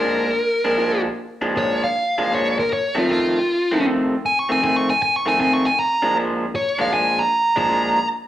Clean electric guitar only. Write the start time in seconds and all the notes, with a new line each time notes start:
0.00 A#2 F3 G#3 D4
0.64 A#2 F3 G#3 D4
0.78 A#2 F3 G#3 D4
1.41 A#2 F3 G#3 D4
1.54 A#2 F3 G#3 D4
2.18 A#2 F3 G#3 D4
2.31 A#2 F3 G#3 D4
2.95 F2 D#3 A3 C4
3.08 F2 D#3 A3 C4
3.72 F2 D#3 A3 C4
3.85 F2 D#3 A3 C4
4.49 F2 D#3 A3 C4
4.62 F2 D#3 A3 C4
5.26 F2 D#3 A3 C4
5.38 F2 D#3 A3 C4
6.02 A#2 F3 G#3 D4
6.14 A#2 F3 G#3 D4
6.79 A#2 F3 G#3 D4
6.92 A#2 F3 G#3 D4
7.56 A#2 F3 G#3 D4
7.68 A#2 F3 G#3 D4